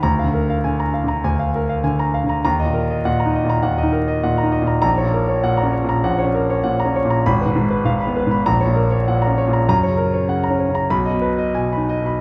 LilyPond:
<<
  \new Staff \with { instrumentName = "Grand piano" } { \time 4/4 \key bes \phrygian \tempo 4 = 99 << { bes''8 r2. r8 | bes''8 r2. r8 | \key fis \major ais''8 r2. r8 | ces'''8 r4. ais''8 r4. |
ais''8 r4. b''8 r4. | } \\ { r16 f''16 bes'16 f''16 aes''16 bes''16 f''16 bes''16 aes''16 f''16 bes'16 f''16 aes''16 bes''16 f''16 bes''16 | r16 ees''16 bes'16 ees''16 ges''16 bes''16 ees''16 bes''16 ges''16 ees''16 bes'16 ees''16 ges''16 bes''16 ees''16 bes''16 | r16 cis''16 ais'16 cis''16 fis''16 ais''16 cis''16 ais''16 fis''16 cis''16 ais'16 cis''16 fis''16 ais''16 cis''16 ais''16 | r16 ces''16 aes,16 ces''16 f''16 ces'''16 ces''16 ces'''16 r16 cis''16 ais'16 cis''16 fis''16 ais''16 cis''16 ais''16 |
r16 cis''16 ais'16 cis''16 fis''16 ais''16 cis''16 ais''16 r16 dis''16 b'16 dis''16 gis''16 b''16 dis''16 b''16 | } >> }
  \new Staff \with { instrumentName = "Grand piano" } { \clef bass \time 4/4 \key bes \phrygian \tuplet 3/2 { d,8 d4 d4 d8 } d,4 \tuplet 3/2 { d4 d8 } | \tuplet 3/2 { ees,8 bes,4 bes,8 ees'8 bes,8 ees,8 ees'4 bes,8 ees'8 bes,8 } | \key fis \major \tuplet 3/2 { ais,,8 ais,4 ais,8 cis'8 ais,8 ais,,8 cis'4 ais,8 cis'8 ais,8 } | \tuplet 3/2 { aes,,8 aes,4 aes,8 ces'8 aes,8 ais,,8 ais,4 ais,8 cis'8 ais,8 } |
\tuplet 3/2 { fis,8 cis4 cis8 cis'8 cis8 b,,8 b,4 b,8 dis'8 b,8 } | }
>>